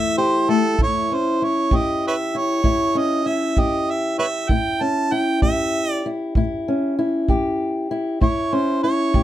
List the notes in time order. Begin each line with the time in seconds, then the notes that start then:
Already playing: A2 E3 A3 E4 G4 E5
0.18 G4 C5
0.49 A3 A4
0.79 A2 E4, kick
0.83 C#5
1.12 C#4 C5
1.42 E4 C#5
1.71 A2 G4, kick
1.76 D#5
2.07 B4 C#5 E5
2.35 E4 C#5
2.64 A2 E4, kick
2.95 C#4 D#5
3.26 E4 E5
3.57 A2 G4 D#5, kick
3.91 E5
4.19 E4 B4 C#5 E5
4.49 A2 E4 G5, kick
4.81 C#4 A5
5.12 E4 G5
5.42 A2 G4 E5, kick
5.92 D5
6.06 E4
6.35 A2 E4, kick
6.68 C#4
6.99 E4
7.28 A2 G4, kick
7.91 E4
8.21 A2 E4 C#5, kick
8.53 C#4 C5
8.83 E4 C#5
9.14 A2 G4, kick